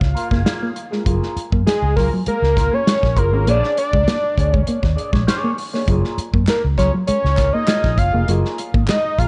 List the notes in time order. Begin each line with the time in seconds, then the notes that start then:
Already playing: F5
0.00 C#2, muted clean electric guitar stroke, kick, snare
0.15 A#3 F4 A#4, closed hi-hat
0.31 F#1 A#3 F4 G#4, kick, snare
0.45 A#3 F4 G#4, snare, closed hi-hat
0.63 A#3
0.76 muted clean electric guitar stroke, closed hi-hat
0.91 G#3 A#3 F4 G#4, snare
1.05 F#1 F#3 A#3 F4 G#4, kick, closed hi-hat
1.23 snare
1.37 muted clean electric guitar stroke, muted fingered electric bass stroke, closed hi-hat
1.52 F#2 A#3, muted clean electric guitar stroke, kick
1.66 G#4, muted fingered electric bass stroke, muted clean electric guitar stroke, snare, closed hi-hat
1.82 C#2
1.96 F#3 A#3 F4 G#4 A#4, kick, snare, open hi-hat
2.13 F#3, muted clean electric guitar stroke
2.26 G#3 A#4, muted fingered electric bass stroke, muted clean electric guitar stroke, closed hi-hat
2.42 C#2, muted clean electric guitar stroke, snare
2.56 A#3 F4 A#4, muted clean electric guitar stroke, kick, snare, closed hi-hat
2.72 A#3 F4 G#4 C#5
2.86 G#3, muted clean electric guitar stroke, snare, closed hi-hat
3.02 A#1, muted clean electric guitar stroke, kick, snare
3.16 F#1 A#3 F4 G#4 A#4, muted clean electric guitar stroke, kick, closed hi-hat
3.32 G#1 A#3 C#4 F4 G#4
3.47 A#1 A#3 D4 G#4 C#5 D5, closed hi-hat
3.64 snare
3.77 D5, muted clean electric guitar stroke, closed hi-hat
3.93 C#2 G#3, muted clean electric guitar stroke, kick
4.07 A#3, muted clean electric guitar stroke, snare, closed hi-hat
4.24 muted clean electric guitar stroke
4.36 D2 D4 G#4 C#5, kick, closed hi-hat
4.53 G#3 C#5, muted clean electric guitar stroke, kick
4.67 A#3, muted clean electric guitar stroke, muted fingered electric bass stroke, closed hi-hat
4.83 D#2, muted clean electric guitar stroke, kick, snare
4.96 D4 G#4 D5, closed hi-hat
5.12 A#1 G#3 D4 G#4 C#5, kick, snare
5.27 D4 G#4 C#5, snare, closed hi-hat
5.44 A#3
5.57 muted clean electric guitar stroke, open hi-hat
5.73 A#3 D4 G#4 C#5, snare
5.88 F#1 F#3 A#3 F4 G#4, kick, closed hi-hat
6.04 snare
6.18 muted fingered electric bass stroke, muted clean electric guitar stroke, closed hi-hat
6.33 F#2 A#3, muted clean electric guitar stroke, kick
6.47 A#4, muted clean electric guitar stroke, muted fingered electric bass stroke, snare, clap, closed hi-hat
6.65 C#2
6.78 F#3 A#3 F4 G#4 C#5, kick, snare, closed hi-hat
6.92 F#3, muted clean electric guitar stroke
7.06 G#3 C#5, muted clean electric guitar stroke, muted fingered electric bass stroke, closed hi-hat
7.22 C#2, muted clean electric guitar stroke, snare
7.36 A#3 F4 A#4, muted clean electric guitar stroke, kick, snare, clap, closed hi-hat
7.53 A#3 F4 G#4 D#5
7.67 G#3 A#3 F4 G#4, snare, clap, closed hi-hat
7.84 A#1, kick, snare
7.97 F#1 F5, muted clean electric guitar stroke, kick, closed hi-hat
8.12 F1 A#3 F4 G#4
8.27 F#1 F#3 A#3 F4 G#4, closed hi-hat
8.45 snare
8.58 muted clean electric guitar stroke, closed hi-hat
8.74 G#1 A#3, muted clean electric guitar stroke, kick
8.88 G#3 D#5, muted clean electric guitar stroke, snare, clap, closed hi-hat
9.04 muted clean electric guitar stroke
9.18 A#1 A#3 F4 G#4 F5, kick, closed hi-hat